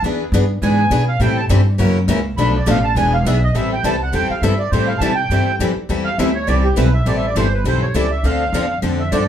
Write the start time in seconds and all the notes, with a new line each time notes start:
0.02 E2 E3 B3 D4 G#4 B4
0.32 G2 E3 B3 D4 G#4 B4
0.62 G#2 E3 B3 D4 G#4 B4 G#5
0.90 B2 E3 B3 D4 G#4 B4
1.08 F5
1.20 A2 E3 G3 C4 E4 A4 G5
1.37 A5
1.49 G2 E3 G3 C4 E4 A4
1.78 F#2 C#3 E3 F#3 A#3 C#4 E4 F#4 A#4
2.08 C#2 C#3 E3 F#3 A#3 C#4 E4 F#4 A#4
2.37 B1 B2 F3 A3 D4 A4 B4 B5
2.56 D5
2.66 A1 B2 F3 A3 D4 A4 B4 F5
2.84 A5
2.95 E1 E3 B3 D4 G#4 B4 G#5
3.13 F5
3.25 B1 E3 B3 D4 G#4 B4 E5
3.44 D#5
3.54 A1 E3 G3 C4 E4 A4 E5
3.73 G5
3.83 C2 E3 G3 C4 E4 A4 A5
4.03 F#5
4.13 E2 E3 G3 C4 E4 A4 G5
4.30 F5, muted upright bass stroke
4.42 G2 E3 G3 C4 E4 A4 E5
4.58 D5
4.71 A2 E3 G3 C4 E4 A4 C5
4.87 F5
4.99 C3 E3 G3 C4 E4 A5
5.03 A4
5.15 G5
5.29 G2 E3 G3 C4 E4 A4
5.59 F2 E3 G3 C4 E4 A4
5.76 muted upright bass stroke
5.89 E2 E3 G3 C4 E4 A4
6.04 F5
6.18 D2 E3 G3 C4 E4 A4 E5
6.35 C#5
6.47 C2 E3 G3 C4 E4 A4 D5
6.64 G4
6.76 B1 E3 G3 C4 E4 A4 B4
6.94 E5
7.06 A1 E3 G3 C4 E4 A4 D5
7.17 E5
7.27 D5
7.35 G1 E3 G3 C4 E4 A4 C5
7.54 B4
7.64 B1 E3 G3 C4 E4 A4 C5
7.82 C#5
7.94 C#2 E3 G3 C4 E4 A4 D5
8.11 E5
8.23 D2 D3 F3 C4 D4 A4 F5
8.53 E2 D3 F3 C4 D4 A4
8.82 F2 D3 F3 C4 D4 A4
8.99 E5
9.11 G2 D3 F3 C4 D4 A4 D5